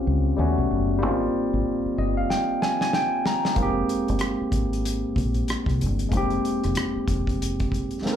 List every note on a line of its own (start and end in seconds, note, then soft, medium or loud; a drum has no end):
0.00 0.32 G3 medium
0.00 0.33 C4 medium
0.00 0.34 C#4 medium
0.00 0.35 F4 medium
0.00 0.36 G4 medium
0.07 0.32 C#2 medium
0.37 0.53 D#2 medium
0.37 0.97 G3 medium
0.37 1.01 A3 medium
0.37 1.02 B3 soft
0.37 1.02 C#4 medium
0.37 1.03 F#4 medium
0.58 0.67 B1 medium
0.71 1.03 F#1 medium
0.98 3.51 G3 medium
0.98 3.52 A#3 medium
1.03 1.27 G#1 medium
1.03 3.53 C4 medium
1.03 3.54 D#4 medium
1.03 3.55 F4 medium
1.53 1.63 G#1 medium
1.86 muted fingered electric bass stroke soft
1.98 2.23 G1 medium
1.98 2.16 D#5 medium
2.17 2.29 F5 medium
2.30 2.59 G5 medium
2.30 snare medium
2.62 2.79 G#5 medium
2.62 snare medium
2.81 2.93 G#5 medium
2.81 snare medium
2.93 3.23 G5 medium
2.93 snare medium
3.26 3.55 A#5 medium
3.26 snare medium
3.45 snare medium
3.54 3.82 F1 medium
3.54 6.07 G#3 medium
3.54 6.08 A#3 medium
3.54 6.09 C4 medium
3.54 kick medium
3.54 closed hi-hat medium
3.60 6.10 D#4 medium
3.60 6.11 G4 medium
3.89 closed hi-hat medium
4.08 4.19 G1 medium
4.08 closed hi-hat soft
4.19 cross-stick medium
4.19 closed hi-hat medium
4.41 muted fingered electric bass stroke soft
4.52 5.03 G#1 medium
4.52 kick medium
4.52 closed hi-hat medium
4.73 closed hi-hat soft
4.85 closed hi-hat medium
5.16 5.42 A#1 medium
5.16 kick medium
5.16 closed hi-hat soft
5.34 closed hi-hat soft
5.48 cross-stick medium
5.48 closed hi-hat medium
5.66 5.83 C2 medium
5.66 kick medium
5.66 cross-stick soft
5.66 closed hi-hat soft
5.81 6.06 G1 medium
5.81 closed hi-hat medium
5.99 closed hi-hat soft
6.09 6.38 F1 medium
6.09 7.98 G#3 medium
6.09 7.99 A#3 medium
6.09 kick medium
6.09 closed hi-hat medium
6.13 8.00 C4 medium
6.13 8.01 D#4 medium
6.17 8.02 G4 medium
6.30 closed hi-hat soft
6.45 closed hi-hat soft
6.64 6.74 F1 medium
6.64 cross-stick soft
6.64 closed hi-hat soft
6.75 cross-stick loud
6.75 closed hi-hat medium
6.97 muted fingered electric bass stroke soft
7.08 7.87 F1 medium
7.08 kick medium
7.08 closed hi-hat medium
7.27 kick medium
7.27 closed hi-hat soft
7.42 closed hi-hat medium
7.60 kick medium
7.60 closed hi-hat soft
7.72 kick medium
7.72 closed hi-hat soft
7.91 closed hi-hat soft
8.02 8.16 G#3 soft
8.02 8.16 A#3 soft
8.02 8.16 C4 soft
8.02 8.16 D#4 soft
8.02 snare soft
8.07 8.13 A4 soft